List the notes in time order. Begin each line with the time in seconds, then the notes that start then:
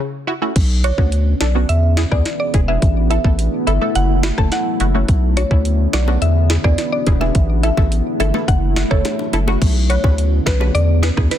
0.00 C#3
0.27 E4 F#4
0.42 A3 C#4 E4 F#4
0.56 B1 D3 B3 C#4, kick, closed hi-hat, crash
0.84 D4 F#4 C#5, closed hi-hat
0.98 D2 B3 C#4 D4 F#4, kick
1.12 closed hi-hat
1.41 B1 D4 A4 D5, snare, closed hi-hat
1.55 B3 C#4 D4 F#4
1.69 E2 E3 B3 D4 F#4 G#4 E5, closed hi-hat
1.97 E4 G#4, snare, closed hi-hat
2.12 E2 B3 D4 E4 G#4 D5, kick, cross-stick
2.25 snare, closed hi-hat
2.40 D5
2.54 E1 E4 G#4, kick, closed hi-hat
2.68 B3 D4 E4 G#4 E5
2.82 A1 A3 E4, kick, closed hi-hat
3.10 E4 A4 E5, closed hi-hat
3.24 A1 A3 B3 E4 A4, kick
3.39 closed hi-hat
3.67 G1 E4 A4 E5, closed hi-hat
3.81 A3 B3 E4 A4
3.95 F#1 F#3 F#5, closed hi-hat
4.23 E4 F#4, snare, closed hi-hat
4.38 F#1 A3 C#4 E4 A4 A5, kick, cross-stick
4.52 F#5, snare, closed hi-hat
4.80 F#1 E4 F#4, closed hi-hat
4.94 A3 C#4 E4 F#4
5.08 B1 D3 B3 C#4, kick, closed hi-hat
5.37 D4 F#4 C#5, closed hi-hat
5.51 D2 B3 C#4 D4 E4, kick
5.65 closed hi-hat
5.93 B1 D4 F#4 D5, snare, closed hi-hat, low bongo
6.07 B3 C#4 D4 F#4, high bongo
6.22 E2 E3 D4 F#4 G#4 E5, closed hi-hat
6.50 E4 G#4, snare, closed hi-hat, high bongo
6.64 E2 B3 D4 E4 G#4 D5, kick, cross-stick
6.78 snare, closed hi-hat
6.92 D5
7.07 E1 E4 G#4, kick, closed hi-hat, low bongo
7.21 B3 D4 E4 G#4 E5, high bongo
7.35 A1 A3 E4, kick, closed hi-hat
7.63 E4 A4 E5, closed hi-hat
7.77 A1 A3 B3 E4 A4, kick, high bongo
7.92 closed hi-hat
8.20 G1 E4 A4 E5, closed hi-hat, low bongo
8.34 A3 B3 E4 A4, high bongo
8.48 F#1 F#3 F#5, kick, closed hi-hat
8.76 E4 F#4, snare, closed hi-hat, high bongo
8.91 F#1 A3 C#4 E4 A4 C#5, kick, cross-stick
9.05 snare, closed hi-hat, high bongo
9.19 high bongo
9.33 F#1 E4 A4, closed hi-hat, low bongo
9.47 A3 C#4 E4 F#4, high bongo
9.61 B1 D3 B3 C#4, kick, closed hi-hat, crash
9.90 F#4 B4 C#5, closed hi-hat
10.04 D2 B3 C#4 D4 F#4 B4, kick, high bongo
10.18 closed hi-hat
10.46 B1 F#4 B4, kick, snare, closed hi-hat, low bongo
10.60 B3 C#4 D4 F#4 B4, high bongo
10.75 E2 E3 B3 D4 F#4 G#4 D5, closed hi-hat
11.03 G#4 B4, snare, closed hi-hat, high bongo
11.17 E2 B3 D4 E4 G#4 B4, kick, cross-stick
11.31 B4, snare, closed hi-hat